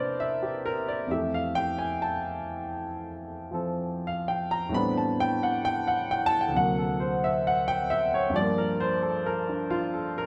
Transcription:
Already playing: C3 A#3 D4 E4 A#4 B4 C5 D5
0.20 E5
0.43 G4
0.66 A#4
0.88 D5
1.07 F2 E3 A3
1.11 G4 E5
1.34 F5
1.55 G5
1.79 G#5
2.02 A5
3.51 F3 C4 A4
4.07 F5
4.28 G5
4.51 A#5
4.69 A2 E3 G3 B3
4.73 C4 D4 B5
4.97 A5
5.20 G5
5.43 F#5
5.65 G5
5.87 F#5
6.11 G5
6.26 A5
6.41 G5
6.48 D2 C3
6.56 F#3 A#3 F#5
6.79 A4
7.00 C5
7.24 E5
7.47 F#5
7.68 G5
7.90 E5
8.14 C#5
8.30 G2 F3
8.36 G3 D5
8.41 A#3
8.58 A#4
8.80 C5
9.03 A4
9.26 A#4
9.49 D4
9.71 F4
9.94 A4
10.18 A#4

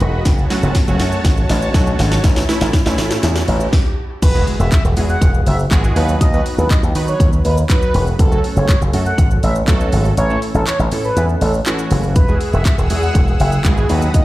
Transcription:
Already playing: F#3 B3 D#4 F#4 D#5 B5, riser
0.00 E1, closed hi-hat
0.25 F#1 C#5 A5, kick, snare, closed hi-hat, shaker
0.38 shaker
0.50 F#3 A3 C#4 F#4, snare, open hi-hat, shaker
0.63 F#1, shaker
0.75 kick, snare, closed hi-hat, shaker
0.87 F#1 F#3 A3 C#4 F#4, shaker
0.99 F#2, snare, open hi-hat, shaker
1.12 shaker
1.25 G#1, kick, snare, closed hi-hat, shaker
1.37 shaker
1.49 A1, snare, open hi-hat, shaker
1.62 shaker
1.74 B1 F#3 A3 C#4 F#4, kick, snare, closed hi-hat, shaker
1.87 shaker
1.99 G#1, snare, open hi-hat, shaker
2.12 snare, shaker
2.24 A1 E4, kick, snare, closed hi-hat, shaker
2.36 snare, shaker
2.49 E3 A3 C#4 E4, snare, open hi-hat, shaker
2.61 A1, snare, shaker
2.73 kick, snare, closed hi-hat, shaker
2.86 A1 E3 A3 C#4 E4, snare, shaker
2.98 A2, snare, open hi-hat, shaker
3.11 snare, shaker
3.23 E2, snare, closed hi-hat, shaker
3.36 snare, shaker
3.48 A1, open hi-hat, shaker
3.60 shaker
3.73 kick, snare
4.22 E1 B4, kick, closed hi-hat, crash, impact, shaker
4.34 G#3 B3 E4 F#4 G#4, shaker
4.47 open hi-hat, shaker
4.59 E1 E5, shaker
4.72 E5, kick, clap, closed hi-hat, shaker
4.84 E1, shaker
4.97 E2 G#3 B3 E4 F#4 G#4, open hi-hat, shaker
5.09 F#5, shaker
5.22 E1, kick, closed hi-hat, shaker
5.34 shaker
5.46 F#1 E5, open hi-hat, shaker
5.59 shaker
5.71 G#1 G#3 B3 E4 F#4 G#4, kick, clap, closed hi-hat, shaker
5.84 shaker
5.96 D#2 F#3 B3 D#4 F#4 B4, open hi-hat, shaker
6.09 shaker
6.21 D#2 D#5, kick, closed hi-hat, shaker
6.33 F#3 B3 D#4 F#4 B4, shaker
6.46 open hi-hat, shaker
6.58 D#2 B4, shaker
6.70 D#5, kick, clap, closed hi-hat, shaker
6.83 D#2, shaker
6.95 D#3 F#3 B3 D#4 F#4 B4, open hi-hat, shaker
7.08 C#5, shaker
7.20 D#2, kick, closed hi-hat, shaker
7.33 shaker
7.45 D#2 B4, open hi-hat, shaker
7.57 shaker
7.69 F#3 B3 D#4 F#4 B4, kick, clap, closed hi-hat, shaker
7.82 shaker
7.94 E1, open hi-hat, shaker
8.07 shaker
8.19 F#1 A4, kick, closed hi-hat, shaker
8.31 F#3 A3 C#4 F#4 A4, shaker
8.44 open hi-hat, shaker
8.56 F#1 C#5, shaker
8.69 C#5, kick, clap, closed hi-hat, shaker
8.81 F#1, shaker
8.93 F#2 F#3 A3 C#4 F#4 A4, open hi-hat, shaker
9.06 F#5, shaker
9.18 G#1, kick, closed hi-hat, shaker
9.31 shaker
9.43 A1 E5, open hi-hat, shaker
9.55 shaker
9.68 B1 F#3 A3 C#4 F#4 A4, kick, clap, closed hi-hat, shaker
9.80 shaker
9.92 G#1, open hi-hat, shaker
10.05 shaker
10.17 A1 C#5, closed hi-hat, shaker
10.30 E3 A3 C#4 E4 A4, shaker
10.42 open hi-hat, shaker
10.54 A1 A4, shaker
10.67 C#5, clap, closed hi-hat, shaker
10.79 A1, shaker
10.91 A2 E3 A3 C#4 E4 A4, open hi-hat, shaker
11.04 B4, shaker
11.16 E2, closed hi-hat, shaker
11.29 shaker
11.41 A1 A4, open hi-hat, shaker
11.54 shaker
11.66 E3 A3 C#4 E4 F#4, clap, closed hi-hat, shaker
11.79 shaker
11.91 F#1, open hi-hat, shaker
12.03 shaker
12.16 E1 G#4 B4 F#5 E6, kick, closed hi-hat, shaker
12.28 G#3 B3 E4 F#4 G#4, shaker
12.41 open hi-hat, shaker
12.53 E1 E5, shaker
12.65 E5, kick, clap, closed hi-hat, shaker
12.78 E1, shaker
12.90 E2 G#3 B3 E4 F#4 G#4, open hi-hat, shaker
13.03 F#5, shaker
13.15 E1, kick, closed hi-hat, shaker
13.28 shaker
13.40 F#1 E5, open hi-hat, shaker
13.52 shaker
13.65 G#1 G#3 B3 E4 F#4 G#4, kick, clap, closed hi-hat, shaker
13.77 shaker
13.89 D#2 F#3 B3 D#4 F#4 B4 F#5 D#6, open hi-hat, shaker
14.02 shaker
14.14 D#2 D#5, kick, closed hi-hat, shaker

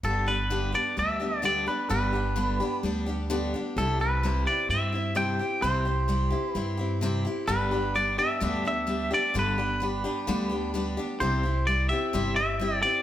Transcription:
0.03 G1 G2 D3 G3 B3 D4 G4 A4
0.27 G3 B3 D4 G4 B4
0.50 G2 D3 G3 B3 D4 G4
0.72 G3 B3 D4 G4 D5
0.97 D2 G3 B3 D4 G4 E5
1.20 G3 B3 D4 G4
1.42 G2 D3 G3 B3 D4 G4 D5
1.66 G3 B3 D4 G4 B4
1.89 G1 G2 D3 G3 B3 D4 G4 B4
2.13 G3 B3 D4 G4
2.36 G2 D3 G3 B3 D4 G4
2.60 G3 B3 D4 G4
2.83 D2 G3 B3 D4 G4
3.06 G3 B3 D4 G4
3.30 G2 D3 G3 B3 D4 G4
3.54 G3 B3 D4 G4
3.76 C2 C3 G3 C4 E4 G4 A4
3.99 C4 E4 G4 B4
4.23 C3 G3 C4 E4 G4
4.46 C4 E4 G4 D5
4.69 G2 G3 C4 E4 G4 E5
4.92 C4 E4 G4
5.15 C3 G3 C4 E4 G4 G5
5.39 C4 E4 G4
5.62 C2 C3 G3 C4 E4 G4 C5
5.85 C4 E4 G4
6.08 C3 G3 C4 E4 G4
6.30 C4 E4 G4
6.50 B4
6.55 G2 G3 C4 E4 G4
6.77 C4 E4 G4
7.01 C3 G3 C4 E4 G4
7.25 C4 E4 G4
7.47 G1 G2 D3 G3 B3 D4 G4 B4
7.71 G3 B3 D4 G4
7.95 G3 B3 D4 G4 D5
8.18 G3 B3 D4 G4 E5
8.40 D2 G2 D3 G3 B3 D4 G4
8.65 G3 B3 D4 G4 E5
8.87 G3 B3 D4 G4
9.11 G3 B3 D4 G4 D5
9.34 G1 G2 D3 G3 B3 D4 G4
9.39 B4
9.58 G3 B3 D4 G4
9.80 G3 B3 D4 G4
10.04 G3 B3 D4 G4
10.27 D2 G2 D3 G3 B3 D4 G4
10.49 G3 B3 D4 G4
10.74 G3 B3 D4 G4
10.97 G3 B3 D4 G4
11.20 C2 C3 G3 C4 E4 G4 C5
11.43 C4 E4 G4
11.67 G3 C4 E4 G4 D5
11.89 C4 E4 G4 E5
12.13 G1 C3 G3 C4 E4 G4
12.36 E4 G4 E5
12.59 G3 C4 E4 G4
12.82 C4 E4 G4 D5

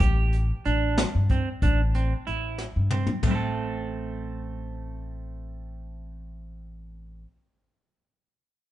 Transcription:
0.00 A1 G4, kick, closed hi-hat
0.33 closed hi-hat
0.65 A1 D4, closed hi-hat
0.98 snare, closed hi-hat
1.15 G2
1.29 C4, kick, closed hi-hat
1.62 A1 D4, kick, closed hi-hat
1.94 C4, closed hi-hat
2.27 A1 E4, closed hi-hat
2.58 snare
2.76 G2
2.90 C4, mid tom
3.07 floor tom
3.23 A1 A3, kick, floor tom, splash
3.27 C4 E4
3.35 A4

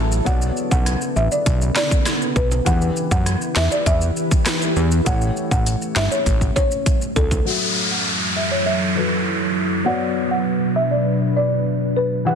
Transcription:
Already playing: A1 C#3 F#3 E4 F#4 A4 E5
0.12 maracas
0.25 B1 D3 B3 F#4 C#5 D5 F#5, kick, closed hi-hat, maracas
0.42 maracas
0.57 maracas
0.71 B1 F#5, kick, maracas
0.86 cross-stick, closed hi-hat, maracas
1.01 maracas
1.16 A1 E5, maracas
1.32 D5, maracas
1.46 B1, kick, closed hi-hat, maracas
1.61 maracas
1.76 D5, snare, clap, maracas
1.91 kick, maracas
2.06 cross-stick, snare, closed hi-hat, maracas
2.22 maracas
2.36 B1 B4, kick, maracas
2.51 high timbale, maracas
2.65 E2 E3 E4 G4 B4 F#5, kick, closed hi-hat, maracas
2.81 maracas
2.96 maracas
3.11 F#2 F#5, kick, maracas
3.26 cross-stick, closed hi-hat, maracas
3.42 maracas
3.56 E2 E5, snare, clap, maracas
3.72 D5, maracas
3.86 E2 E5, kick, closed hi-hat, maracas
4.01 maracas
4.17 maracas
4.31 kick, maracas
4.46 cross-stick, snare, clap, closed hi-hat, maracas
4.62 maracas
4.76 E2, maracas
4.92 maracas
5.05 A1 A3 C#4 E4 G4 C#5 F#5, kick, closed hi-hat, maracas
5.21 maracas
5.37 maracas
5.51 A1 F#5, kick, maracas
5.66 closed hi-hat, maracas
5.82 maracas
5.96 G1 E5, snare, clap, maracas
6.11 C#5, maracas
6.26 A1, kick, closed hi-hat, maracas
6.41 kick, maracas
6.56 C#5, kick, high timbale, maracas
6.71 maracas
6.86 kick, closed hi-hat, maracas
7.01 maracas
7.16 C#2 A4, kick, maracas
7.31 kick, high timbale, maracas
7.45 F#2 F#3 E4 F#4 A4 E5 F#5, downlifter
7.91 F#5
8.36 E5
8.51 C#5
8.66 E5
8.95 F#3 F#4 A4 B4
9.85 B2 B3 D4 F#4 B4 C#5 D5 F#5
10.31 F#5
10.76 E5
10.91 D5
11.36 D5
11.96 B4
12.25 E2 E3 E4 G4 B4 F#5, riser

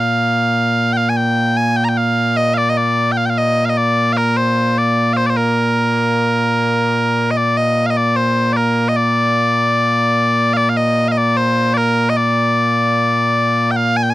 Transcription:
Already playing: A#2 A#3 F5
0.93 G5
0.97 F5
1.09 G#5
1.17 G5
1.57 G#5
1.76 G5
1.84 A#5
1.89 G5
1.97 F5
2.37 D#5
2.54 D5 F5
2.70 D#5
2.77 D5
3.12 G5
3.17 F5
3.26 G5
3.30 F5
3.38 D#5
3.65 F5
3.70 D#5
3.77 D5
4.13 F5
4.17 A#4
4.37 C5
4.78 D5
5.13 C5 F5
5.26 C5 D5
5.37 A#4
7.31 D#5
7.37 D5
7.57 D#5
7.86 F5
7.90 D#5
7.97 D5
8.16 C5
8.53 A#4 D5
8.89 D#5
8.96 D5
10.54 D5 F5
10.69 F5
10.77 D#5
11.08 D#5 F5
11.18 D5
11.37 C5
11.74 A#4 D5
12.09 D#5
12.17 D5
13.71 G5
13.76 F5
13.97 G#5
14.03 G5
14.10 G#5

